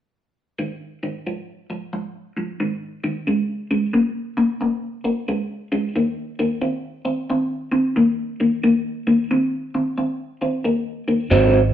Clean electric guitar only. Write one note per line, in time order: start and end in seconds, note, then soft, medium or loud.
0.59 0.98 G#2 medium
0.59 0.98 D#3 medium
1.03 1.24 G#2 medium
1.03 1.24 D#3 medium
1.27 1.65 G#2 medium
1.27 1.65 F3 medium
1.70 1.91 G#2 medium
1.70 1.91 F3 medium
1.93 2.32 G#2 medium
1.93 2.32 F3 medium
2.37 2.58 G#2 medium
2.37 2.58 F3 medium
2.60 2.99 G#2 medium
2.60 2.99 D#3 medium
3.04 3.25 G#2 medium
3.04 3.25 D#3 medium
3.27 3.66 C#3 medium
3.27 3.66 G#3 medium
3.71 3.92 C#3 medium
3.71 3.92 G#3 medium
3.93 4.33 C#3 medium
3.93 4.33 A#3 medium
4.37 4.58 C#3 medium
4.37 4.59 A#3 medium
4.61 5.00 C#3 medium
4.61 5.00 A#3 medium
5.04 5.25 C#3 medium
5.04 5.26 A#3 medium
5.28 5.67 C#3 medium
5.28 5.67 G#3 medium
5.72 5.93 C#3 medium
5.72 5.93 G#3 medium
5.96 6.34 D#3 medium
5.96 6.35 A#3 medium
6.39 6.60 D#3 medium
6.39 6.60 A#3 medium
6.62 7.01 D#3 medium
6.62 7.01 C4 medium
7.05 7.26 D#3 medium
7.05 7.26 C4 medium
7.30 7.68 D#3 medium
7.30 7.68 C4 medium
7.72 7.93 D#3 medium
7.72 7.93 C4 medium
7.96 8.35 D#3 medium
7.96 8.35 A#3 medium
8.40 8.61 D#3 medium
8.40 8.61 A#3 medium
8.64 9.02 D#3 medium
8.64 9.02 A#3 medium
9.07 9.28 D#3 medium
9.07 9.28 A#3 medium
9.31 9.69 D#3 medium
9.31 9.69 C4 medium
9.75 9.95 D#3 medium
9.75 9.95 C4 medium
9.98 10.36 D#3 medium
9.98 10.36 C4 medium
10.42 10.62 D#3 medium
10.42 10.62 C4 medium
10.64 11.03 D#3 medium
10.64 11.03 A#3 medium
11.08 11.29 D#3 medium
11.08 11.29 A#3 medium
11.30 11.59 G#2 medium
11.30 11.59 F#3 medium
11.30 11.59 C4 medium
11.30 11.59 D#4 medium